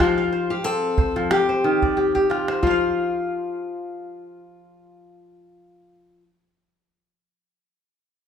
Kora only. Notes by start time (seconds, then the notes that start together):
Already playing: F4 G4 C5 D5
0.00 F3
0.18 F5
0.33 C5
0.50 F5
0.65 C4
0.98 C5
1.16 F3
1.31 G4
1.49 C5
1.64 D#3
1.82 D5
1.97 G4
2.15 G4
2.30 F4
2.48 C5
2.63 F3 F4
2.71 F5